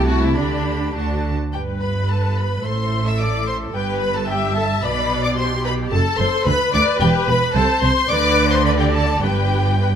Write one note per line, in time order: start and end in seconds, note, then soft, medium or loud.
0.00 0.36 C2 medium
0.00 0.36 C3 medium
0.00 0.36 A3 medium
0.00 0.37 E4 medium
0.00 0.38 A5 medium
0.07 0.22 F#4 medium
0.23 0.38 E4 medium
0.36 0.94 D2 medium
0.36 0.95 D3 medium
0.36 0.95 D4 medium
0.36 0.96 G4 medium
0.36 0.96 B5 medium
0.95 1.33 D2 medium
0.95 1.33 D3 medium
0.95 1.33 D4 medium
0.95 1.34 F#4 medium
0.95 1.32 A5 medium
1.53 2.61 G1 soft
1.53 2.61 G2 medium
1.53 1.61 G4 soft
1.53 2.61 B4 medium
1.53 1.61 G5 medium
1.81 1.89 B4 soft
1.81 2.09 B5 medium
2.09 2.36 A4 soft
2.09 2.37 A5 medium
2.37 2.65 B4 medium
2.37 2.65 B5 medium
2.64 3.74 A1 medium
2.64 3.74 A2 medium
2.64 3.74 A4 medium
2.64 3.06 C5 medium
2.64 3.06 C6 medium
3.06 3.20 E5 medium
3.06 3.21 E6 medium
3.20 3.47 D5 medium
3.20 3.48 D6 medium
3.46 3.54 C5 medium
3.46 3.56 C6 medium
3.74 4.81 G1 medium
3.74 4.81 G2 medium
3.74 4.01 G4 medium
3.74 4.28 B4 medium
3.74 4.01 G5 medium
4.00 4.15 B4 medium
4.00 4.14 B5 medium
4.15 4.21 A4 medium
4.15 4.29 A5 medium
4.28 4.55 G4 medium
4.28 4.82 E5 medium
4.28 4.56 G5 medium
4.55 4.64 A4 medium
4.55 4.82 A5 medium
4.83 5.90 B1 medium
4.83 5.90 B2 medium
4.83 5.23 B4 medium
4.83 5.38 D5 medium
4.83 5.24 B5 medium
5.23 5.37 D5 medium
5.23 5.30 D6 medium
5.37 5.91 G4 medium
5.37 5.46 C5 medium
5.37 5.64 C6 medium
5.65 5.73 B4 medium
5.65 5.73 B5 medium
5.92 6.00 F#1 medium
5.92 6.00 F#2 medium
5.92 6.46 A4 medium
5.92 6.19 A4 medium
5.92 6.19 A5 medium
6.19 6.27 F#1 medium
6.19 6.27 F#2 medium
6.19 6.46 C5 medium
6.19 6.46 C6 medium
6.45 6.54 D2 medium
6.45 6.74 B4 medium
6.45 7.55 B4 medium
6.45 6.73 B5 loud
6.73 6.81 D2 medium
6.73 6.82 D2 medium
6.73 7.00 D5 medium
6.73 6.82 D6 loud
7.00 7.09 E1 medium
7.00 7.09 E2 medium
7.00 7.27 G4 medium
7.00 7.08 G5 medium
7.27 7.35 E1 medium
7.27 7.36 E2 medium
7.27 7.55 B4 medium
7.27 7.55 B5 medium
7.55 7.63 C2 medium
7.55 7.64 C3 medium
7.55 7.82 A4 medium
7.55 8.10 C5 medium
7.55 7.82 A5 loud
7.82 7.90 C2 medium
7.82 7.91 C3 medium
7.82 7.91 C5 medium
7.82 8.10 C6 loud
8.09 9.19 D2 medium
8.09 9.19 D3 medium
8.09 8.64 B4 loud
8.09 8.50 D5 loud
8.09 8.51 D6 loud
8.50 8.64 C5 medium
8.50 8.66 C6 medium
8.64 8.79 B4 medium
8.64 9.22 D5 medium
8.64 8.71 B5 medium
8.79 8.93 G4 medium
8.79 8.86 G5 medium
8.92 9.22 A4 medium
8.92 9.22 A5 medium
9.22 9.95 G1 medium
9.22 9.95 G2 medium
9.22 9.95 G4 medium
9.22 9.75 B4 medium
9.22 9.95 G5 medium
9.80 9.88 B4 medium